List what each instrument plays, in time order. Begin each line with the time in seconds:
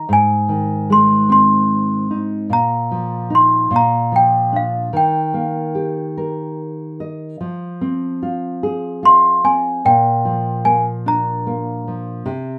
Already playing: celesta A#5
0.09 nylon-string guitar G#2
0.13 celesta G#5
0.49 nylon-string guitar D#3
0.90 nylon-string guitar G#3, celesta C6
1.29 nylon-string guitar C4, celesta C6
2.10 nylon-string guitar D#4
2.50 nylon-string guitar A#2, celesta A#5
2.91 nylon-string guitar F3
3.30 nylon-string guitar D#4
3.35 celesta C6
3.71 nylon-string guitar A#2
3.76 celesta A#5
4.12 nylon-string guitar F3
4.16 celesta G5
4.52 nylon-string guitar D4
4.56 celesta F5
4.93 nylon-string guitar D#3, celesta G5
5.34 nylon-string guitar A#3
5.75 nylon-string guitar G4
6.17 nylon-string guitar A#4
7.00 nylon-string guitar D#5
7.41 nylon-string guitar F3
7.81 nylon-string guitar C4
8.22 nylon-string guitar F4
8.63 nylon-string guitar G#4
9.03 nylon-string guitar F4, celesta C6
9.44 nylon-string guitar C4, celesta G#5
9.85 nylon-string guitar A#2, celesta G5
10.25 nylon-string guitar F3
10.65 nylon-string guitar A#3, celesta G#5
11.06 nylon-string guitar D4, celesta A#5
11.47 nylon-string guitar A#3
11.87 nylon-string guitar F3
12.26 nylon-string guitar C3